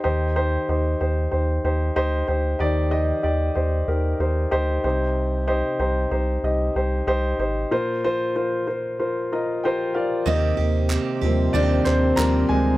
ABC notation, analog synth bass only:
X:1
M:4/4
L:1/16
Q:1/4=94
K:Eb
V:1 name="Analog synth bass" clef=bass
E,,4 E,,2 E,,2 E,,2 E,,2 D,,2 D,,2 | E,,4 E,,2 E,,2 E,,2 E,,2 D,,2 C,,2- | C,,4 C,,2 C,,2 C,,2 C,,2 C,,2 A,,,2 | z16 |
E,,2 E,,3 z E,,2 E,,2 E,,2 E,,2 D,,2 |]